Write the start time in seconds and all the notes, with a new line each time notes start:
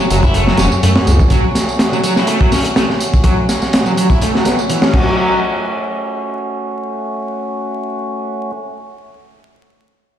Already playing: A3 C#4 F#4
0.10 F#1 F#3, closed hi-hat, tambourine
0.23 E4, kick, tambourine
0.34 A3, closed hi-hat, tambourine
0.47 F#3, snare
0.57 E1 C#4, snare, closed hi-hat, tambourine
0.72 F#2, tambourine
0.83 F#2 A3, closed hi-hat, tambourine
0.96 snare
1.07 C#2, closed hi-hat, tambourine
1.20 kick, tambourine
1.30 F#3, kick, closed hi-hat, tambourine
1.55 snare, closed hi-hat, tambourine
1.69 tambourine
1.79 snare, closed hi-hat, tambourine
1.93 F#3, tambourine
2.04 F#3, closed hi-hat, tambourine
2.16 E4, snare, tambourine
2.27 A3, closed hi-hat, tambourine
2.41 F#3, kick
2.52 C#4, snare, open hi-hat, tambourine
2.65 closed hi-hat, tambourine
2.76 A3, snare, closed hi-hat, tambourine
2.90 snare
3.01 closed hi-hat, tambourine
3.13 kick, tambourine
3.24 F#3, kick, closed hi-hat, tambourine
3.49 snare, closed hi-hat, tambourine
3.62 snare, tambourine
3.73 snare, closed hi-hat, tambourine
3.86 F#3, tambourine
3.97 F#3, closed hi-hat, tambourine
4.10 E4, kick, tambourine
4.21 A3, closed hi-hat, tambourine
4.35 F#3, snare
4.45 B3, snare, closed hi-hat, tambourine
4.59 tambourine
4.70 E3, closed hi-hat, tambourine
4.82 C#4, snare, tambourine
4.93 F#3 A3 C#4 F#4, kick, crash